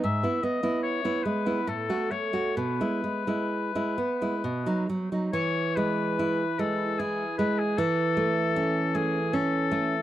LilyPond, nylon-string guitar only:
\new Staff \with { instrumentName = "Nylon-string guitar" } { \time 3/4 \key e \major \tempo 4 = 74 gis,16 <b e'>16 b16 <b e'>8 <b e'>16 gis16 <b e'>16 a,16 <a fis'>16 a16 <a fis'>16 | b,16 <gis e'>16 gis16 <gis e'>8 <gis e'>16 b16 <gis e'>16 b,16 <fis dis'>16 fis16 <fis dis'>16 | e8 gis8 e'8 gis8 e'8 gis8 | e8 a8 cis'8 a8 cis'8 a8 | }